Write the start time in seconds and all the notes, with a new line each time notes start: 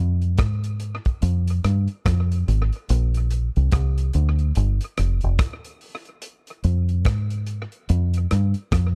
Already playing: F2
0.22 closed hi-hat
0.38 G#2, kick, cross-stick, closed hi-hat
0.64 closed hi-hat
0.80 closed hi-hat
1.05 kick, closed hi-hat
1.22 F2, closed hi-hat
1.48 closed hi-hat
1.64 G2, cross-stick, closed hi-hat
1.88 closed hi-hat
2.06 F2, kick, cross-stick, closed hi-hat
2.32 closed hi-hat
2.48 G#1, closed hi-hat
2.73 closed hi-hat
2.89 A#1, closed hi-hat
3.14 closed hi-hat
3.31 closed hi-hat
3.56 C2, closed hi-hat
3.72 C2, kick, cross-stick, closed hi-hat
3.98 closed hi-hat
4.13 D2, closed hi-hat
4.39 closed hi-hat
4.55 G1, closed hi-hat
4.81 closed hi-hat
4.97 F1, cross-stick, closed hi-hat
5.21 F1, closed hi-hat
5.39 kick, cross-stick, closed hi-hat
5.65 closed hi-hat
5.81 open hi-hat
6.05 closed hi-hat
6.22 closed hi-hat
6.47 closed hi-hat
6.64 F2, closed hi-hat
6.89 closed hi-hat
7.05 G#2, kick, cross-stick, closed hi-hat
7.30 closed hi-hat
7.47 closed hi-hat
7.72 closed hi-hat
7.89 F2, closed hi-hat
8.14 closed hi-hat
8.31 G2, cross-stick, closed hi-hat
8.54 closed hi-hat
8.72 F2, kick, cross-stick, closed hi-hat